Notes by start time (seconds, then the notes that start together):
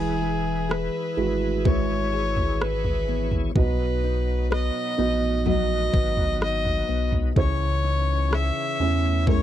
Already playing: E1 E3 G#3 E4 G#4 B4
0.22 E4
0.69 G#4 B4, cross-stick
1.17 G#1 G#3 E4 F#4
1.64 G#3 E4 B4 C#5, kick, floor tom
2.13 G#4
2.37 floor tom
2.61 E4 B4, cross-stick
2.84 floor tom
3.08 B3
3.32 floor tom
3.55 B1 B2 F#3 B3 D#4 F#4 B4 D#5, kick, floor tom
4.04 D#4
4.51 B4 D#5, cross-stick
4.98 A#1 B3 D#4 F#4 D#5
5.46 F#3 B3 F#4 D#5, floor tom
5.93 G#1 B4, kick
6.17 floor tom
6.41 D#4 D#5, cross-stick
6.65 floor tom
6.88 B1 B3
7.12 floor tom
7.36 C#2 C#3 E3 C#4 E4 C#5, kick, floor tom
7.84 D#4
8.31 G#4 E5, cross-stick
8.80 E2 C#4 E4 E5
9.27 G#3 C#4 E4 A#4 C#5, kick, floor tom